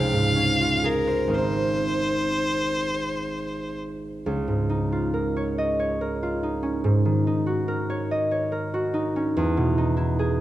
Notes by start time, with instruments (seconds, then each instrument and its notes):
Already playing: harp C#2 F4 C5, violin F5
0.13 harp G#2
0.36 harp C#4
0.61 harp F4
0.84 harp G#4, violin A#4
1.07 harp C5
1.28 harp G#1 C4 D#4 A#4
1.32 harp C5, violin C5
4.26 harp C#2
4.48 harp G#2
4.69 harp D#4
4.92 harp F4
5.14 harp A#4
5.36 harp C#5
5.58 harp D#5
5.79 harp C#5
6.01 harp A#4
6.23 harp F4
6.43 harp D#4
6.63 harp C#4
6.84 harp G#2
7.05 harp D#3
7.27 harp D#4
7.47 harp F#4
7.68 harp A#4
7.90 harp C#5
8.11 harp D#5
8.31 harp C#5
8.52 harp A#4
8.74 harp F#4
8.94 harp D#4
9.16 harp C#4
9.37 harp E2
9.57 harp B2
9.78 harp D#4
9.97 harp E4
10.19 harp G#4